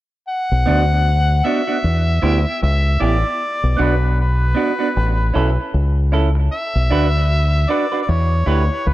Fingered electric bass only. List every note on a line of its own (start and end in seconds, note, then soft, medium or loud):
0.52 0.66 B1 medium
0.67 1.41 D2 loud
1.84 2.20 E2 medium
2.23 2.44 D2 loud
2.63 2.98 C#2 loud
3.01 3.22 A1 medium
3.63 3.78 B1 medium
3.80 4.53 B1 medium
4.97 5.32 A1 loud
5.36 5.56 B1 medium
5.74 6.48 C#2 medium
6.75 6.90 B1 medium
6.92 7.65 D2 medium
8.09 8.44 E2 medium
8.47 8.68 D2 medium
8.87 8.94 C#2 loud